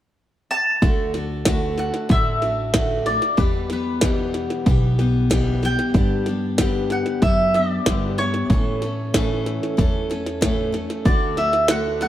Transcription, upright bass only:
0, 0, Header, 1, 2, 480
1, 0, Start_track
1, 0, Key_signature, 2, "major"
1, 0, Tempo, 639659
1, 615, Time_signature, 4, 2, 24, 8
1, 9065, End_track
2, 0, Start_track
2, 0, Title_t, "Upright bass"
2, 0, Program_c, 0, 32
2, 619, Note_on_c, 0, 38, 78
2, 1425, Note_off_c, 0, 38, 0
2, 1576, Note_on_c, 0, 33, 72
2, 2383, Note_off_c, 0, 33, 0
2, 2536, Note_on_c, 0, 40, 78
2, 3344, Note_off_c, 0, 40, 0
2, 3501, Note_on_c, 0, 35, 77
2, 4306, Note_off_c, 0, 35, 0
2, 4462, Note_on_c, 0, 43, 79
2, 5267, Note_off_c, 0, 43, 0
2, 5422, Note_on_c, 0, 42, 78
2, 5828, Note_off_c, 0, 42, 0
2, 5904, Note_on_c, 0, 43, 74
2, 6309, Note_off_c, 0, 43, 0
2, 6380, Note_on_c, 0, 45, 83
2, 7184, Note_off_c, 0, 45, 0
2, 7344, Note_on_c, 0, 40, 71
2, 8146, Note_off_c, 0, 40, 0
2, 8298, Note_on_c, 0, 38, 77
2, 9065, Note_off_c, 0, 38, 0
2, 9065, End_track
0, 0, End_of_file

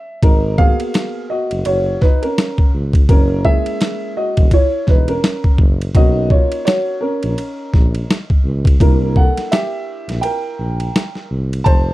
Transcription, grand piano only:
0, 0, Header, 1, 2, 480
1, 0, Start_track
1, 0, Tempo, 714286
1, 154, Time_signature, 4, 2, 24, 8
1, 8023, End_track
2, 0, Start_track
2, 0, Title_t, "Grand piano"
2, 0, Program_c, 0, 0
2, 0, Note_on_c, 0, 76, 77
2, 123, Note_off_c, 0, 76, 0
2, 155, Note_on_c, 0, 63, 65
2, 155, Note_on_c, 0, 70, 89
2, 378, Note_off_c, 0, 63, 0
2, 378, Note_off_c, 0, 70, 0
2, 388, Note_on_c, 0, 58, 53
2, 391, Note_on_c, 0, 77, 117
2, 394, Note_on_c, 0, 59, 48
2, 397, Note_on_c, 0, 68, 76
2, 399, Note_on_c, 0, 66, 58
2, 845, Note_off_c, 0, 77, 0
2, 849, Note_off_c, 0, 68, 0
2, 873, Note_off_c, 0, 66, 0
2, 873, Note_on_c, 0, 75, 87
2, 883, Note_on_c, 0, 66, 73
2, 1097, Note_off_c, 0, 75, 0
2, 1102, Note_off_c, 0, 66, 0
2, 1115, Note_on_c, 0, 73, 91
2, 1129, Note_on_c, 0, 66, 68
2, 1345, Note_off_c, 0, 66, 0
2, 1354, Note_on_c, 0, 71, 81
2, 1362, Note_off_c, 0, 73, 0
2, 1371, Note_on_c, 0, 63, 62
2, 1485, Note_off_c, 0, 71, 0
2, 1493, Note_off_c, 0, 63, 0
2, 1494, Note_on_c, 0, 70, 82
2, 1509, Note_on_c, 0, 61, 55
2, 1810, Note_off_c, 0, 70, 0
2, 1818, Note_off_c, 0, 61, 0
2, 2044, Note_off_c, 0, 58, 0
2, 2047, Note_off_c, 0, 59, 0
2, 2075, Note_on_c, 0, 70, 90
2, 2086, Note_on_c, 0, 61, 71
2, 2304, Note_off_c, 0, 61, 0
2, 2316, Note_on_c, 0, 56, 54
2, 2317, Note_on_c, 0, 76, 105
2, 2318, Note_on_c, 0, 58, 47
2, 2320, Note_on_c, 0, 61, 46
2, 2320, Note_on_c, 0, 64, 57
2, 2322, Note_off_c, 0, 70, 0
2, 2324, Note_on_c, 0, 68, 76
2, 2769, Note_off_c, 0, 76, 0
2, 2772, Note_off_c, 0, 68, 0
2, 2801, Note_on_c, 0, 66, 71
2, 2802, Note_on_c, 0, 75, 89
2, 3008, Note_off_c, 0, 56, 0
2, 3009, Note_off_c, 0, 58, 0
2, 3010, Note_off_c, 0, 61, 0
2, 3010, Note_off_c, 0, 64, 0
2, 3021, Note_off_c, 0, 66, 0
2, 3045, Note_off_c, 0, 75, 0
2, 3047, Note_on_c, 0, 64, 69
2, 3048, Note_on_c, 0, 73, 92
2, 3264, Note_off_c, 0, 64, 0
2, 3288, Note_off_c, 0, 73, 0
2, 3288, Note_on_c, 0, 71, 78
2, 3293, Note_on_c, 0, 63, 59
2, 3415, Note_off_c, 0, 63, 0
2, 3420, Note_on_c, 0, 70, 83
2, 3424, Note_on_c, 0, 61, 56
2, 3425, Note_off_c, 0, 71, 0
2, 3733, Note_off_c, 0, 70, 0
2, 3735, Note_off_c, 0, 61, 0
2, 3995, Note_on_c, 0, 58, 56
2, 4000, Note_on_c, 0, 61, 50
2, 4001, Note_on_c, 0, 63, 63
2, 4003, Note_on_c, 0, 66, 83
2, 4008, Note_on_c, 0, 75, 106
2, 4222, Note_off_c, 0, 66, 0
2, 4239, Note_on_c, 0, 73, 86
2, 4242, Note_on_c, 0, 65, 68
2, 4248, Note_off_c, 0, 75, 0
2, 4460, Note_off_c, 0, 73, 0
2, 4461, Note_off_c, 0, 65, 0
2, 4470, Note_on_c, 0, 73, 92
2, 4477, Note_on_c, 0, 66, 67
2, 4699, Note_off_c, 0, 66, 0
2, 4710, Note_off_c, 0, 61, 0
2, 4710, Note_on_c, 0, 70, 81
2, 4719, Note_off_c, 0, 73, 0
2, 4720, Note_on_c, 0, 61, 64
2, 5405, Note_off_c, 0, 70, 0
2, 5410, Note_off_c, 0, 61, 0
2, 5888, Note_off_c, 0, 58, 0
2, 5891, Note_off_c, 0, 63, 0
2, 5913, Note_on_c, 0, 58, 54
2, 5917, Note_on_c, 0, 62, 48
2, 5920, Note_on_c, 0, 70, 84
2, 5922, Note_on_c, 0, 64, 63
2, 6160, Note_on_c, 0, 78, 86
2, 6164, Note_off_c, 0, 70, 0
2, 6166, Note_on_c, 0, 69, 68
2, 6381, Note_off_c, 0, 78, 0
2, 6383, Note_off_c, 0, 69, 0
2, 6395, Note_on_c, 0, 76, 89
2, 6403, Note_on_c, 0, 67, 69
2, 6852, Note_off_c, 0, 67, 0
2, 6863, Note_on_c, 0, 79, 90
2, 6878, Note_on_c, 0, 70, 73
2, 6889, Note_off_c, 0, 76, 0
2, 7562, Note_off_c, 0, 79, 0
2, 7569, Note_off_c, 0, 70, 0
2, 7807, Note_off_c, 0, 58, 0
2, 7809, Note_off_c, 0, 62, 0
2, 7811, Note_off_c, 0, 64, 0
2, 7824, Note_on_c, 0, 81, 105
2, 7836, Note_on_c, 0, 72, 85
2, 8023, Note_off_c, 0, 72, 0
2, 8023, Note_off_c, 0, 81, 0
2, 8023, End_track
0, 0, End_of_file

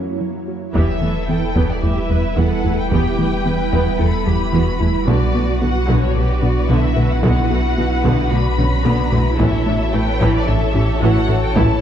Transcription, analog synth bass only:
0, 0, Header, 1, 2, 480
1, 0, Start_track
1, 0, Tempo, 540541
1, 666, Time_signature, 4, 2, 24, 8
1, 10488, End_track
2, 0, Start_track
2, 0, Title_t, "Analog synth bass"
2, 0, Program_c, 0, 38
2, 660, Note_on_c, 0, 40, 68
2, 806, Note_off_c, 0, 40, 0
2, 901, Note_on_c, 0, 52, 47
2, 1047, Note_off_c, 0, 52, 0
2, 1142, Note_on_c, 0, 52, 50
2, 1287, Note_off_c, 0, 52, 0
2, 1380, Note_on_c, 0, 40, 66
2, 1526, Note_off_c, 0, 40, 0
2, 1623, Note_on_c, 0, 40, 55
2, 1768, Note_off_c, 0, 40, 0
2, 1863, Note_on_c, 0, 40, 53
2, 2008, Note_off_c, 0, 40, 0
2, 2103, Note_on_c, 0, 40, 67
2, 2248, Note_off_c, 0, 40, 0
2, 2346, Note_on_c, 0, 40, 53
2, 2490, Note_off_c, 0, 40, 0
2, 2585, Note_on_c, 0, 40, 69
2, 2729, Note_off_c, 0, 40, 0
2, 2829, Note_on_c, 0, 52, 48
2, 2972, Note_off_c, 0, 52, 0
2, 3070, Note_on_c, 0, 52, 50
2, 3213, Note_off_c, 0, 52, 0
2, 3307, Note_on_c, 0, 40, 69
2, 3451, Note_off_c, 0, 40, 0
2, 3547, Note_on_c, 0, 40, 58
2, 3691, Note_off_c, 0, 40, 0
2, 3785, Note_on_c, 0, 40, 49
2, 3929, Note_off_c, 0, 40, 0
2, 4022, Note_on_c, 0, 40, 69
2, 4167, Note_off_c, 0, 40, 0
2, 4266, Note_on_c, 0, 40, 50
2, 4410, Note_off_c, 0, 40, 0
2, 4508, Note_on_c, 0, 47, 68
2, 4651, Note_off_c, 0, 47, 0
2, 4746, Note_on_c, 0, 59, 52
2, 4890, Note_off_c, 0, 59, 0
2, 4988, Note_on_c, 0, 59, 48
2, 5131, Note_off_c, 0, 59, 0
2, 5228, Note_on_c, 0, 47, 74
2, 5372, Note_off_c, 0, 47, 0
2, 5466, Note_on_c, 0, 47, 59
2, 5610, Note_off_c, 0, 47, 0
2, 5706, Note_on_c, 0, 47, 47
2, 5850, Note_off_c, 0, 47, 0
2, 5945, Note_on_c, 0, 47, 73
2, 6089, Note_off_c, 0, 47, 0
2, 6188, Note_on_c, 0, 47, 55
2, 6331, Note_off_c, 0, 47, 0
2, 6429, Note_on_c, 0, 47, 75
2, 6572, Note_off_c, 0, 47, 0
2, 6662, Note_on_c, 0, 59, 48
2, 6807, Note_off_c, 0, 59, 0
2, 6905, Note_on_c, 0, 59, 46
2, 7049, Note_off_c, 0, 59, 0
2, 7142, Note_on_c, 0, 47, 65
2, 7287, Note_off_c, 0, 47, 0
2, 7382, Note_on_c, 0, 47, 68
2, 7527, Note_off_c, 0, 47, 0
2, 7621, Note_on_c, 0, 47, 53
2, 7767, Note_off_c, 0, 47, 0
2, 7865, Note_on_c, 0, 47, 77
2, 8009, Note_off_c, 0, 47, 0
2, 8101, Note_on_c, 0, 47, 56
2, 8247, Note_off_c, 0, 47, 0
2, 8341, Note_on_c, 0, 45, 81
2, 8487, Note_off_c, 0, 45, 0
2, 8578, Note_on_c, 0, 57, 55
2, 8725, Note_off_c, 0, 57, 0
2, 8824, Note_on_c, 0, 57, 50
2, 8969, Note_off_c, 0, 57, 0
2, 9061, Note_on_c, 0, 45, 79
2, 9207, Note_off_c, 0, 45, 0
2, 9305, Note_on_c, 0, 45, 68
2, 9449, Note_off_c, 0, 45, 0
2, 9545, Note_on_c, 0, 45, 54
2, 9689, Note_off_c, 0, 45, 0
2, 9782, Note_on_c, 0, 45, 78
2, 9928, Note_off_c, 0, 45, 0
2, 10022, Note_on_c, 0, 45, 56
2, 10167, Note_off_c, 0, 45, 0
2, 10260, Note_on_c, 0, 45, 79
2, 10406, Note_off_c, 0, 45, 0
2, 10488, End_track
0, 0, End_of_file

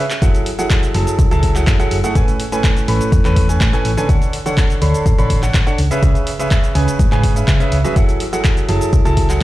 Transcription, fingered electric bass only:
0, 0, Header, 1, 2, 480
1, 0, Start_track
1, 0, Key_signature, 3, "minor"
1, 0, Tempo, 483871
1, 217, Time_signature, 4, 2, 24, 8
1, 9355, End_track
2, 0, Start_track
2, 0, Title_t, "Fingered electric bass"
2, 0, Program_c, 0, 33
2, 217, Note_on_c, 0, 30, 94
2, 320, Note_off_c, 0, 30, 0
2, 938, Note_on_c, 0, 30, 97
2, 1041, Note_off_c, 0, 30, 0
2, 1177, Note_on_c, 0, 37, 91
2, 1280, Note_off_c, 0, 37, 0
2, 1303, Note_on_c, 0, 37, 83
2, 1626, Note_off_c, 0, 37, 0
2, 1657, Note_on_c, 0, 42, 93
2, 1760, Note_off_c, 0, 42, 0
2, 1897, Note_on_c, 0, 30, 88
2, 2000, Note_off_c, 0, 30, 0
2, 2137, Note_on_c, 0, 33, 101
2, 2240, Note_off_c, 0, 33, 0
2, 2858, Note_on_c, 0, 33, 97
2, 2961, Note_off_c, 0, 33, 0
2, 3097, Note_on_c, 0, 40, 89
2, 3200, Note_off_c, 0, 40, 0
2, 3222, Note_on_c, 0, 40, 78
2, 3545, Note_off_c, 0, 40, 0
2, 3577, Note_on_c, 0, 45, 92
2, 3680, Note_off_c, 0, 45, 0
2, 3818, Note_on_c, 0, 33, 94
2, 3920, Note_off_c, 0, 33, 0
2, 4058, Note_on_c, 0, 38, 97
2, 4161, Note_off_c, 0, 38, 0
2, 4777, Note_on_c, 0, 38, 93
2, 4880, Note_off_c, 0, 38, 0
2, 5017, Note_on_c, 0, 33, 96
2, 5120, Note_off_c, 0, 33, 0
2, 5143, Note_on_c, 0, 33, 81
2, 5466, Note_off_c, 0, 33, 0
2, 5497, Note_on_c, 0, 33, 92
2, 5600, Note_off_c, 0, 33, 0
2, 5738, Note_on_c, 0, 37, 88
2, 5841, Note_off_c, 0, 37, 0
2, 5978, Note_on_c, 0, 37, 98
2, 6081, Note_off_c, 0, 37, 0
2, 6698, Note_on_c, 0, 37, 97
2, 6801, Note_off_c, 0, 37, 0
2, 6938, Note_on_c, 0, 44, 90
2, 7041, Note_off_c, 0, 44, 0
2, 7062, Note_on_c, 0, 44, 81
2, 7385, Note_off_c, 0, 44, 0
2, 7418, Note_on_c, 0, 49, 89
2, 7521, Note_off_c, 0, 49, 0
2, 7657, Note_on_c, 0, 37, 88
2, 7760, Note_off_c, 0, 37, 0
2, 7897, Note_on_c, 0, 30, 97
2, 8000, Note_off_c, 0, 30, 0
2, 8618, Note_on_c, 0, 30, 94
2, 8721, Note_off_c, 0, 30, 0
2, 8857, Note_on_c, 0, 37, 91
2, 8960, Note_off_c, 0, 37, 0
2, 8982, Note_on_c, 0, 37, 77
2, 9305, Note_off_c, 0, 37, 0
2, 9355, End_track
0, 0, End_of_file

